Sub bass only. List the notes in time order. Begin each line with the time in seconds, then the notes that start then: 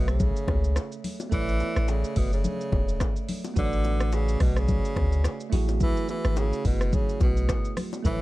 Already playing: B1
0.48 C#2
1.32 A1
1.77 A1
2.16 F#1
2.72 E1
3.57 A1
4.41 B1
4.96 D2
5.53 A1
6.25 G#1
6.65 F#1
7.21 B1
8.05 A1